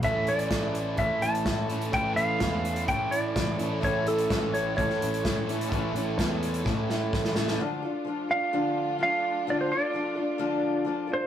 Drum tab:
HH |x-xxx-x-x-xxx-xx|x-x-x-xxx-x-x-x-|x-xxx-x-x-xxx-xx|x-x-x-xx--------|
SD |----o-------o---|----o-------o---|----o----o--o---|----o---o-o-oooo|
BD |o---o---o---o---|o---o---o---o---|o---o---o---o---|o---o---o---o---|

HH |----------------|----------------|
SD |----------------|----------------|
BD |----------------|----------------|